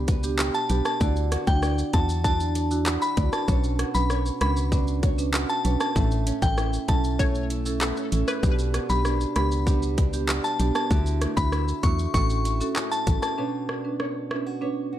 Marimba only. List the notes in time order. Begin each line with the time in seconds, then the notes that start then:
0.23 B3 D4 G4
0.70 B3 D4 G4
1.00 D4 E4 F#4
1.47 D4 E4 F#4
1.93 D4 E4 F#4
2.24 D4 E4 F#4
2.71 D4 E4 F#4
3.17 D4 E4 F#4
3.48 C#4 D4 B4
3.94 C#4 D4 B4
4.41 C#4 D4 B4
4.72 C#4 D4 B4
5.18 C#4 D4 B4
5.65 C#4 D4 B4
5.95 C#4 E4 A4
6.42 C#4 E4 A4
6.88 C#4 E4 A4
7.19 C#4 E4 A4
7.66 C#4 E4 A4
8.12 C#4 E4 A4
8.43 B3 D4 G4
8.89 B3 D4 G4
9.36 B3 D4 G4
9.67 B3 D4 G4
10.13 B3 D4 G4
10.59 B3 D4 G4
10.90 D4 E4 F#4
11.37 D4 E4 F#4
11.83 D4 E4 F#4
12.14 C#4 F#4 A4
12.61 C#4 F#4 A4
13.07 C#4 F#4 A4
13.38 C#4 D4 B4
13.84 C#4 D4 B4
14.30 C#4 D4 B4
14.61 C#4 D4 B4